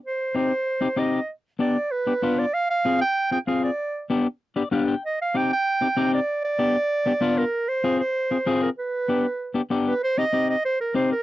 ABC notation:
X:1
M:4/4
L:1/8
Q:1/4=192
K:Gphr
V:1 name="Clarinet"
c2 c4 e2 | z2 d2 =B3 d | f f2 g2 g f d- | d2 z6 |
e f g g4 d- | d d6 B- | B c2 c4 B | =B6 z B |
[K:Cm] c e2 e c B c B |]
V:2 name="Clean electric guitar"
z2 [CEG] z2 [CEG] [CEG] z | z2 [=B,DG] z2 [B,DG] [B,DF] z | z2 [CFA] z2 [CFA] [CFA] z | z2 [=B,DG] z2 [B,DGd] [B,DGf] g |
z2 [CEG] z2 [CEG] [CEG] z | z2 [=B,DG] z2 [B,DG] [B,DF] z | z2 [CFA] z2 [CFA] [CFA] z | z2 [=B,DG] z2 [B,DG] [B,DG] z |
[K:Cm] z [CEG] [CEG] z3 [CEG] z |]